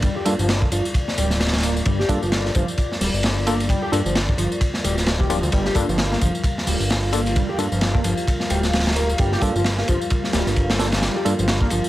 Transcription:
Already playing: G1 G3 F4 A#4 D5
0.02 G3, kick, ride, tambourine
0.16 G4
0.25 G2 A#3 D4 F4 A4, ride, tambourine
0.39 G1 F3, tambourine
0.49 snare, ride, tambourine
0.62 kick
0.72 G1 F3, ride, tambourine
0.85 tambourine
0.94 kick, ride, tambourine
1.08 snare
1.18 D1 G3, ride, tambourine
1.30 snare, tambourine
1.40 snare, ride, tambourine
1.47 snare, ride
1.53 snare, ride
1.58 snare, ride
1.63 A#3, ride, tambourine
1.77 tambourine
1.85 G1 G3, kick, ride, tambourine
1.99 G4, snare
2.09 G2 A#3 D4 F4 A4, kick, ride, tambourine
2.22 G1 F3, tambourine
2.32 snare, ride, tambourine
2.45 snare
2.55 G1 F3, kick, ride, tambourine
2.68 tambourine
2.78 kick, ride, tambourine
2.92 snare
3.01 D1 G3, open hi-hat, tambourine
3.14 G1, tambourine
3.23 snare, ride, tambourine
3.46 A#3 D4 F4 A4, ride, tambourine
3.60 ride, tambourine
3.69 G3, kick, ride, tambourine
3.82 G4
3.92 G2 A#3 D4 F4 A4, ride, tambourine
4.05 G1 F3, tambourine
4.15 snare, ride, tambourine
4.29 kick
4.38 G1 F3, ride, tambourine
4.52 tambourine
4.61 kick, ride, tambourine
4.74 snare
4.84 D1 G3, ride, tambourine
4.97 snare, tambourine
5.06 snare, ride, tambourine
5.20 G3, kick
5.30 F3 A#3 D4 F4 G4, ride, tambourine
5.43 D2, tambourine
5.52 G1 G3 F5, kick, ride, tambourine
5.65 G4, snare
5.75 G2 A#3 D4 F4 A4, kick, ride, tambourine
5.88 G1 F3, tambourine
5.98 snare, ride, tambourine
6.12 A#3, snare
6.21 G1 F3, kick, ride, tambourine
6.35 tambourine
6.44 kick, ride, tambourine
6.58 snare
6.67 D1 G3, open hi-hat, tambourine
6.80 G1, tambourine
6.90 snare, ride, tambourine
7.13 A#3 D4 F4 A4, ride, tambourine
7.26 ride, tambourine
7.36 G3, kick, ride, tambourine
7.49 G4
7.58 G2 A#3 D4 F4 A4, ride, tambourine
7.72 G1 F3, tambourine
7.81 snare, ride
7.95 A#3, kick
8.04 G1 F3, ride, tambourine
8.17 tambourine
8.27 kick, ride, tambourine
8.40 snare
8.50 D1 G3, ride, tambourine
8.63 snare, tambourine
8.73 snare, ride, tambourine
8.80 snare, ride
8.87 snare, ride
8.91 snare, ride
8.96 A#3, ride, tambourine
9.09 tambourine
9.18 G1 G3, kick, ride, tambourine
9.32 G4, snare
9.41 G2 A#3 D4 F4 A4, kick, ride, tambourine
9.55 G1 F3, tambourine
9.64 snare, ride, tambourine
9.78 A#3, snare
9.88 G1 F3, kick, ride, tambourine
10.01 tambourine
10.10 kick, ride, tambourine
10.24 snare
10.33 D1 G3, snare, ride, tambourine
10.46 G1, snare, tambourine
10.56 kick, ride, tambourine
10.70 snare, ride
10.79 A#3 D4 F4 A4, snare, ride, tambourine
10.92 snare, ride, tambourine
11.02 G3, snare, ride, tambourine
11.16 G4
11.25 G2 A#3 D4 F4 A4, ride, tambourine
11.39 G1 F3, tambourine
11.48 snare, ride, tambourine
11.61 A#3, kick
11.70 G1 F3, ride, tambourine
11.84 tambourine

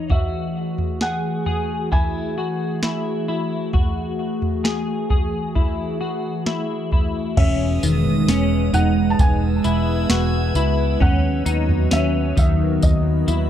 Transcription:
Already playing: E3 D#4
0.10 A3 F#4 G#4 E5, kick, floor tom
0.78 floor tom
1.01 G#4 F#5, snare
1.46 G#4, floor tom
1.92 E4 G#5, kick, floor tom
2.38 F#4
2.83 E4, snare
3.28 E4
3.73 F#4 G#4, kick, floor tom
4.42 floor tom
4.64 G#4, snare
5.10 G#4, kick, floor tom
5.55 E4, kick, floor tom
6.01 F#4
6.46 E4, snare
6.92 E4, kick, floor tom
7.37 E1 G#3 B3 C#4 G#4 B4 E5 D#6, kick, floor tom, crash
7.83 E1 D#3, tambourine
8.06 floor tom
8.28 E1 C#4, snare, tambourine
8.73 E1 D#4 F#5, floor tom, tambourine
9.10 A5
9.19 E1 G#5 E6, kick, floor tom, tambourine
9.49 G#6
9.64 E1 E4, tambourine
10.10 E1 F#4, snare, tambourine
10.55 C#2 E4, tambourine
11.00 D#2 F#3 B3 C#4 F#4 F#5, kick, floor tom
11.46 D#2 D#4, tambourine
11.69 floor tom
11.91 D#2 C#4 E5, snare, tambourine
12.37 D#2 D#3 E5, kick, floor tom, tambourine
12.82 D#2 D#5 B5, kick, floor tom, tambourine
13.28 D#2 E4, tambourine

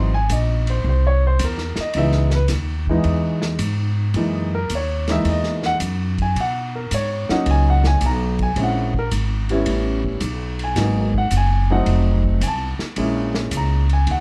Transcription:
Already playing: G#1 C6
0.14 G#5
0.29 A#1 D#5, hi-hat pedal, ride
0.67 C5, ride
0.84 C2
0.89 C5
1.07 C#5
1.27 C5
1.39 E2, hi-hat pedal, ride
1.45 A#4
1.58 snare
1.76 muted upright bass stroke, snare, ride
1.81 D#5
1.93 C#2 E3 G#3 B3 D#4, ride
1.98 E5
2.12 snare
2.30 snare
2.35 B4
2.48 D#2, snare, hi-hat pedal, ride
2.87 E3 G#3 B3 D#4, kick
3.04 E2, ride
3.42 snare
3.59 G#2, hi-hat pedal, ride
4.14 F#2 E3 G#3 A#3 D#4, ride
4.55 A#4
4.70 D#2, hi-hat pedal, ride
4.75 C#5
5.08 E3 G#3 A#3 D#4 E5, snare, ride
5.24 E2, ride
5.29 D#5
5.43 snare
5.63 F#5, snare
5.80 F#2, hi-hat pedal, ride
6.18 G#5, kick, ride
6.36 B2, ride
6.41 F#5
6.75 A#4
6.91 G#2 C#5, hi-hat pedal, ride
7.29 F#3 A#3 C#4 D#4 F#5, muted upright bass stroke, snare
7.46 C#2, ride
7.51 G#5
7.70 F#5
7.84 G#5, snare
8.01 B1, hi-hat pedal, ride
8.06 A#5
8.39 G#5, kick, ride
8.56 A#1 G#3 C4 C#4 E4, ride
8.63 F#5
8.94 kick
8.99 A#4
9.11 G#1, hi-hat pedal, ride
9.49 G3 B3 C#4 E4, ride
9.66 A1, ride
10.04 kick
10.20 B1, hi-hat pedal, ride
10.59 ride
10.64 G#5
10.76 G#1 F#3 A#3 B3 D#4, snare, ride
11.14 F#5, kick
11.31 F#1, hi-hat pedal, ride
11.37 G#5
11.70 F#3 A3 C4 D#4 F#5
11.86 F1, ride
12.24 kick
12.41 C2 G#5, hi-hat pedal, ride
12.47 A5
12.79 muted upright bass stroke, snare
12.96 A#1 G#3 A#3 C#4 E4, ride
13.35 snare
13.51 C#2, hi-hat pedal, ride
13.57 A#5
13.89 G#5, ride
14.07 D#2, ride
14.11 F#5

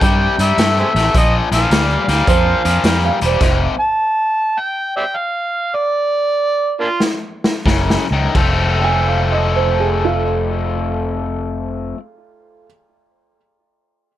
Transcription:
0.01 G2 C3 G3 G5, kick, closed hi-hat
0.39 G2 C3 G3 E5, closed hi-hat
0.58 G2 C3 A3, snare, closed hi-hat
0.80 G#4 C5 E5
0.95 A1 C3 A3, snare, closed hi-hat
1.15 A#1 A#2 F3 D#5, kick, closed hi-hat
1.52 A#1 A#2 F3 F5, snare, closed hi-hat
1.71 D2 A#2 G3, snare, closed hi-hat
2.08 D2 A#2 G3, snare, closed hi-hat
2.27 F2 A#2 F3 C5, kick, closed hi-hat
2.65 F2 A#2 F3, closed hi-hat
2.84 F2 A#2 G3, snare, closed hi-hat
3.05 F5
3.21 E1 A#2 G3 C5, closed hi-hat
3.41 F1 F2 C3, kick, snare, closed hi-hat, crash
3.80 A5
4.59 G5
4.97 D5 E5 G5
5.16 F5
5.75 D5
6.80 A#3 D4 F4
7.00 snare
7.44 snare
7.66 F#1 F#2 C#3, kick, snare
7.90 snare
8.11 C#2 F#2 D#3
8.35 F1 F2 F3 A3 C4, kick, crash
8.80 G5
8.84 G#5
9.08 F5
9.32 D#5
9.56 C5
9.80 G#4
10.04 A3 F4

